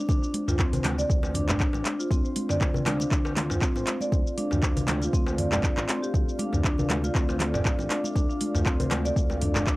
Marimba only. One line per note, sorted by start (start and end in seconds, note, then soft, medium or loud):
0.09 0.16 D4 loud
0.23 0.33 D4 medium
0.48 0.59 F4 medium
0.59 0.67 C4 loud
0.73 0.84 C5 medium
0.98 1.09 D5 loud
1.35 1.47 D4 medium
1.49 1.59 D4 medium
1.60 1.68 D4 loud
1.74 1.84 D4 medium
1.99 2.10 F4 medium
2.11 2.18 C4 loud
2.25 2.35 C5 medium
2.50 2.60 D5 loud
2.86 2.99 D4 medium
3.00 3.10 D4 medium
3.11 3.19 D4 loud
3.25 3.36 D4 medium
3.51 3.61 F4 medium
3.62 3.69 C4 loud
3.76 3.87 C5 medium
4.01 4.11 D5 loud
4.38 4.50 D4 medium
4.51 4.62 D4 medium
4.63 4.70 D4 loud
4.77 4.87 D4 medium
5.02 5.13 F4 medium
5.13 5.21 C4 loud
5.27 5.38 C5 medium
5.38 5.51 D5 medium
5.52 5.63 D5 medium
5.89 6.01 C4 medium
6.02 6.13 G4 medium
6.39 6.52 D4 medium
6.53 6.63 D4 medium
6.64 6.72 D4 loud
6.78 6.89 D4 medium
7.04 7.14 F4 medium
7.15 7.22 C4 loud
7.29 7.39 C5 medium
7.54 7.64 D5 loud
7.90 8.03 D4 medium
8.04 8.15 D4 medium
8.16 8.23 D4 loud
8.29 8.40 D4 medium
8.55 8.65 F4 medium
8.66 8.74 C4 loud
8.80 8.91 C5 medium
9.05 9.15 D5 loud
9.42 9.54 D4 medium
9.56 9.66 D4 medium
9.67 9.74 D4 loud